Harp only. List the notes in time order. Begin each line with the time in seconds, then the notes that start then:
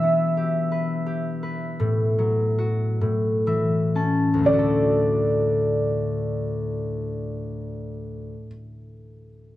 Already playing: E3 D4 F#4
0.03 B3
0.37 G4
0.72 B4
1.06 G4
1.43 B4
1.80 A2
2.19 F#3
2.58 F#4
3.01 A2
3.47 E3 E5
3.95 C#4 A5
4.34 D2
4.39 A2
4.44 D3
4.49 A3
4.53 F#4
4.59 A4